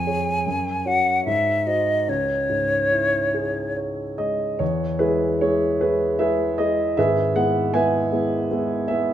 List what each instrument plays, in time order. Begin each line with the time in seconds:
Already playing: grand piano F2, flute G#5
0.07 grand piano G#4 C#5
0.46 grand piano F#2
0.86 grand piano F#4 C#5, flute F#5
1.25 grand piano G#2, flute E5
1.67 grand piano F#4 C5, flute D#5
2.08 grand piano C#2, flute C#5
2.49 grand piano G#2
2.92 grand piano E4
3.34 grand piano G#4
3.77 grand piano C#5
4.18 grand piano G#3 D#5
4.59 grand piano E2 C#5
4.99 grand piano G#3 E4 G#4 B4
5.41 grand piano G#3 E4 G#4 C#5
5.81 grand piano G#3 E4 G#4 B4
6.19 grand piano G#3 E4 G#4 B4 E5
6.58 grand piano G#3 E4 G#4 D#5
6.97 grand piano G#1 G#4 B4 E5
7.36 grand piano G#3 B3 E4 F#5
7.74 grand piano G#3 B3 E4 B4 E5 G#5
8.12 grand piano G#3 B3 E4
8.51 grand piano G#3 B3 E4
8.88 grand piano G#3 B3 E4 E5